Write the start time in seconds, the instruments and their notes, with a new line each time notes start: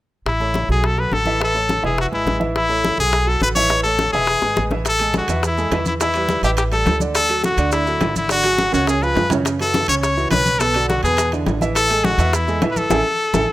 0.26 upright bass A1, trumpet E4, high bongo, high conga
0.40 grand piano A3 A4 C#5, high bongo, high conga
0.54 high bongo, high conga
0.69 upright bass B1, grand piano F#3 F#4 A4, trumpet G#4, high bongo, high conga
0.83 trumpet A4, high bongo, high conga
0.97 grand piano F#3 F#4 A4, trumpet B4, high bongo, high conga
1.12 upright bass A1, trumpet A4, high bongo, low bongo, high conga
1.26 grand piano E3 E4 E5, high conga
1.40 grand piano E3 E4 E5, trumpet A4, high bongo, high conga
1.54 grand piano A3 A4 C#5, high bongo, high conga
1.69 high bongo, high conga
1.82 upright bass E1, grand piano E3 E4 E5, trumpet G#4, high bongo, high conga
1.98 trumpet F#4, high bongo, high conga
2.12 upright bass G#1, grand piano G#3 G#4 B4, trumpet E4, high bongo, high conga
2.26 upright bass A1, grand piano G#3 G#4 B4, high bongo, low bongo, high conga
2.40 grand piano E3 E4 E5, high conga
2.56 trumpet E4, high bongo, high conga
2.69 grand piano A3 A4 C#5, high bongo, high conga
2.85 high bongo, high conga
2.98 upright bass B1, grand piano F#3 F#4 A4, trumpet G#4, high bongo, high conga
3.13 high bongo, high conga
3.27 grand piano F#3 F#4 A4, trumpet A4, high bongo, high conga
3.41 upright bass A1, trumpet B4, high bongo, low bongo, high conga
3.55 grand piano E3 E4 E5, trumpet C#5, high conga
3.70 grand piano E3 E4 E5, high bongo, high conga
3.83 grand piano A3 A4 C#5, trumpet A4, high bongo, high conga
3.99 high bongo, high conga
4.13 upright bass E1, grand piano E3 E4 E5, trumpet G#4, high bongo, high conga
4.27 high bongo, high conga
4.42 upright bass G#1, grand piano G#3 G#4 B4, high bongo, high conga
4.56 upright bass A1, grand piano G#3 G#4 B4, high bongo, high conga
4.71 grand piano E3 E4 E5, low bongo, high conga
4.85 trumpet A4, high bongo, high conga, high timbale, maracas
4.99 grand piano G#3 G#4 A4, high bongo, high conga, high timbale, maracas
5.14 high bongo, high conga, low timbale, maracas
5.18 trumpet F#4
5.28 upright bass E2, grand piano E3 E4 E5, high bongo, high conga, high timbale, maracas
5.43 trumpet E4, high bongo, high conga, maracas
5.57 grand piano G#3 G#4 A4, high bongo, high conga, maracas
5.71 upright bass E2, grand piano E3 E4 E5, high bongo, low bongo, high conga, high timbale, low timbale, maracas
5.86 trumpet E4, high conga, maracas
6.00 grand piano E3 E4 E5, trumpet E4, high bongo, high conga, high timbale, maracas
6.14 grand piano G3 G4 B4, high bongo, high conga, high timbale, maracas
6.28 high bongo, high conga, low timbale, maracas
6.43 upright bass A1, grand piano E3 E4 E5, trumpet G4, high bongo, high conga, high timbale, maracas
6.57 trumpet G4, high bongo, high conga, high timbale, maracas
6.72 grand piano G3 G4 A4, trumpet A4, high bongo, high conga, high timbale, maracas
6.86 upright bass D2, high bongo, low bongo, high conga, high timbale, low timbale, maracas
7.00 grand piano D3 D4 D5, high conga, maracas
7.15 trumpet A4, high bongo, high conga, high timbale, maracas
7.29 grand piano F#3 F#4 A4, high bongo, high conga, high timbale, maracas
7.43 trumpet F#4, high bongo, high conga, low timbale, maracas
7.57 upright bass D2, grand piano D3 D4 D5, high bongo, high conga, high timbale, maracas
7.72 trumpet E4, high bongo, high conga, maracas
7.87 grand piano F#3 F#4 A4, high bongo, high conga, maracas
8.01 upright bass G#1, grand piano D3 D4 D5, high bongo, low bongo, high conga, high timbale, low timbale, maracas
8.16 trumpet E4, high conga, maracas
8.29 grand piano D3 D4 D5, trumpet F#4, high bongo, high conga, high timbale, maracas
8.44 grand piano F#3 F#4 G#4, high bongo, high conga, high timbale, maracas
8.58 high bongo, high conga, low timbale, maracas
8.72 upright bass C#2, grand piano C#3 C#4 C#5, trumpet F#4, high bongo, high conga, high timbale, maracas
8.87 trumpet G#4, high bongo, high conga, high timbale, maracas
9.01 grand piano F3 F4 G#4, trumpet B4, high bongo, high conga, maracas
9.15 upright bass F#2, high bongo, low bongo, high conga, low timbale, maracas
9.30 grand piano C#3 C#4 C#5, high conga, low timbale, maracas
9.45 high bongo, high conga, high timbale, maracas
9.59 grand piano E3 E4 F#4, trumpet A4, high bongo, high conga, high timbale, maracas
9.74 high bongo, high conga, low timbale, maracas
9.88 upright bass C#2, grand piano C#3 C#4 C#5, trumpet C#5, high bongo, high conga, high timbale, maracas
10.02 trumpet C#5, high bongo, high conga, maracas
10.17 grand piano E3 E4 F#4, high bongo, high conga, maracas
10.31 upright bass B1, grand piano C#3 C#4 C#5, trumpet B4, high bongo, low bongo, high conga, high timbale, low timbale, maracas
10.46 high conga, maracas
10.59 grand piano B2 B3 B4, trumpet A4, high bongo, high conga, high timbale, maracas
10.74 grand piano D3 D4 F#4, high bongo, high conga, high timbale, maracas
10.89 trumpet F#4, high bongo, high conga, low timbale, maracas
11.03 upright bass E2, grand piano B2 B3 B4, trumpet G#4, high bongo, high conga, high timbale, maracas
11.17 high bongo, high conga, high timbale, maracas
11.32 grand piano D3 D4 E4, high bongo, high conga, high timbale, maracas
11.46 upright bass A1, high bongo, low bongo, high conga, high timbale, low timbale, maracas
11.61 grand piano E3 E4 E5, high conga, maracas
11.75 trumpet A4, high bongo, high timbale, maracas
11.90 grand piano G#3 G#4 A4, high bongo, high conga, high timbale, maracas
12.04 trumpet F#4, high bongo, high conga, low timbale, maracas
12.18 upright bass E2, grand piano E3 E4 E5, high bongo, high conga, high timbale, maracas
12.33 trumpet E4, high bongo, high conga, maracas
12.48 grand piano G#3 G#4 A4, high bongo, high conga, maracas
12.61 upright bass A1, grand piano E3 E4 E5, high bongo, low bongo, high conga, high timbale, low timbale, maracas
12.71 trumpet B4
12.76 trumpet A4, high conga, maracas
12.90 upright bass A1, grand piano E4 G#4 A4, high bongo, high conga, high timbale, maracas
13.33 upright bass A1, grand piano E4 G#4 A4, high bongo, high conga, high timbale, maracas